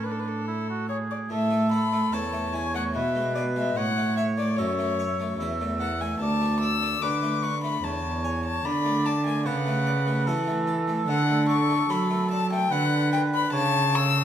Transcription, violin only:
0, 0, Header, 1, 2, 480
1, 0, Start_track
1, 0, Key_signature, 3, "major"
1, 0, Tempo, 828729
1, 756, Time_signature, 3, 2, 24, 8
1, 1709, Tempo, 814111
1, 6503, Key_signature, 2, "major"
1, 8366, End_track
2, 0, Start_track
2, 0, Title_t, "Violin"
2, 0, Program_c, 0, 40
2, 21, Note_on_c, 0, 71, 52
2, 67, Note_on_c, 0, 69, 49
2, 76, Note_off_c, 0, 71, 0
2, 111, Note_on_c, 0, 71, 49
2, 119, Note_off_c, 0, 69, 0
2, 160, Note_on_c, 0, 69, 57
2, 169, Note_off_c, 0, 71, 0
2, 510, Note_off_c, 0, 69, 0
2, 513, Note_on_c, 0, 73, 58
2, 560, Note_off_c, 0, 73, 0
2, 642, Note_on_c, 0, 74, 54
2, 688, Note_off_c, 0, 74, 0
2, 753, Note_on_c, 0, 76, 70
2, 990, Note_off_c, 0, 76, 0
2, 994, Note_on_c, 0, 83, 77
2, 1233, Note_on_c, 0, 81, 63
2, 1241, Note_off_c, 0, 83, 0
2, 1470, Note_on_c, 0, 80, 75
2, 1478, Note_off_c, 0, 81, 0
2, 1589, Note_off_c, 0, 80, 0
2, 1594, Note_on_c, 0, 78, 67
2, 1640, Note_off_c, 0, 78, 0
2, 1707, Note_on_c, 0, 76, 60
2, 1941, Note_off_c, 0, 76, 0
2, 1945, Note_on_c, 0, 74, 70
2, 1992, Note_off_c, 0, 74, 0
2, 2073, Note_on_c, 0, 76, 67
2, 2190, Note_on_c, 0, 78, 83
2, 2199, Note_off_c, 0, 76, 0
2, 2424, Note_off_c, 0, 78, 0
2, 2427, Note_on_c, 0, 76, 70
2, 2475, Note_off_c, 0, 76, 0
2, 2553, Note_on_c, 0, 74, 71
2, 2661, Note_on_c, 0, 73, 73
2, 2670, Note_off_c, 0, 74, 0
2, 3267, Note_off_c, 0, 73, 0
2, 3386, Note_on_c, 0, 78, 72
2, 3514, Note_on_c, 0, 80, 61
2, 3523, Note_off_c, 0, 78, 0
2, 3620, Note_off_c, 0, 80, 0
2, 3623, Note_on_c, 0, 81, 80
2, 3858, Note_off_c, 0, 81, 0
2, 3862, Note_on_c, 0, 88, 83
2, 4108, Note_on_c, 0, 86, 74
2, 4117, Note_off_c, 0, 88, 0
2, 4347, Note_on_c, 0, 85, 78
2, 4355, Note_off_c, 0, 86, 0
2, 4469, Note_off_c, 0, 85, 0
2, 4472, Note_on_c, 0, 83, 76
2, 4590, Note_on_c, 0, 81, 70
2, 4599, Note_off_c, 0, 83, 0
2, 4829, Note_on_c, 0, 80, 68
2, 4838, Note_off_c, 0, 81, 0
2, 4950, Note_off_c, 0, 80, 0
2, 4954, Note_on_c, 0, 81, 76
2, 5070, Note_on_c, 0, 83, 93
2, 5078, Note_off_c, 0, 81, 0
2, 5309, Note_on_c, 0, 81, 81
2, 5318, Note_off_c, 0, 83, 0
2, 5429, Note_off_c, 0, 81, 0
2, 5432, Note_on_c, 0, 80, 72
2, 5545, Note_off_c, 0, 80, 0
2, 5549, Note_on_c, 0, 78, 74
2, 6132, Note_off_c, 0, 78, 0
2, 6503, Note_on_c, 0, 78, 88
2, 6727, Note_off_c, 0, 78, 0
2, 6743, Note_on_c, 0, 85, 89
2, 6988, Note_on_c, 0, 83, 75
2, 6997, Note_off_c, 0, 85, 0
2, 7223, Note_off_c, 0, 83, 0
2, 7226, Note_on_c, 0, 81, 83
2, 7344, Note_off_c, 0, 81, 0
2, 7356, Note_on_c, 0, 79, 90
2, 7470, Note_on_c, 0, 78, 96
2, 7478, Note_off_c, 0, 79, 0
2, 7704, Note_off_c, 0, 78, 0
2, 7707, Note_on_c, 0, 79, 87
2, 7754, Note_off_c, 0, 79, 0
2, 7838, Note_on_c, 0, 83, 92
2, 7942, Note_off_c, 0, 83, 0
2, 7945, Note_on_c, 0, 81, 111
2, 8196, Note_on_c, 0, 88, 104
2, 8205, Note_off_c, 0, 81, 0
2, 8366, Note_off_c, 0, 88, 0
2, 8366, End_track
0, 0, End_of_file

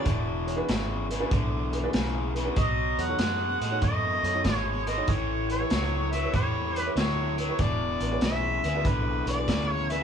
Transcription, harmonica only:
0, 0, Header, 1, 2, 480
1, 0, Start_track
1, 0, Tempo, 627615
1, 43, Time_signature, 4, 2, 24, 8
1, 7673, End_track
2, 0, Start_track
2, 0, Title_t, "Harmonica"
2, 0, Program_c, 0, 22
2, 0, Note_on_c, 0, 74, 99
2, 346, Note_off_c, 0, 74, 0
2, 1980, Note_on_c, 0, 75, 98
2, 2303, Note_on_c, 0, 78, 110
2, 2314, Note_off_c, 0, 75, 0
2, 2928, Note_off_c, 0, 78, 0
2, 2932, Note_on_c, 0, 75, 105
2, 3475, Note_off_c, 0, 75, 0
2, 3475, Note_on_c, 0, 73, 105
2, 3698, Note_off_c, 0, 73, 0
2, 3734, Note_on_c, 0, 75, 96
2, 3896, Note_on_c, 0, 73, 89
2, 3908, Note_off_c, 0, 75, 0
2, 4210, Note_off_c, 0, 73, 0
2, 4217, Note_on_c, 0, 73, 95
2, 4689, Note_on_c, 0, 76, 91
2, 4701, Note_off_c, 0, 73, 0
2, 4846, Note_off_c, 0, 76, 0
2, 4854, Note_on_c, 0, 73, 96
2, 5191, Note_off_c, 0, 73, 0
2, 5191, Note_on_c, 0, 71, 96
2, 5299, Note_off_c, 0, 71, 0
2, 5339, Note_on_c, 0, 73, 93
2, 5782, Note_off_c, 0, 73, 0
2, 5821, Note_on_c, 0, 74, 102
2, 6263, Note_off_c, 0, 74, 0
2, 6301, Note_on_c, 0, 76, 103
2, 6781, Note_on_c, 0, 71, 90
2, 6792, Note_off_c, 0, 76, 0
2, 7094, Note_off_c, 0, 71, 0
2, 7101, Note_on_c, 0, 74, 99
2, 7415, Note_off_c, 0, 74, 0
2, 7415, Note_on_c, 0, 73, 99
2, 7577, Note_on_c, 0, 76, 97
2, 7589, Note_off_c, 0, 73, 0
2, 7673, Note_off_c, 0, 76, 0
2, 7673, End_track
0, 0, End_of_file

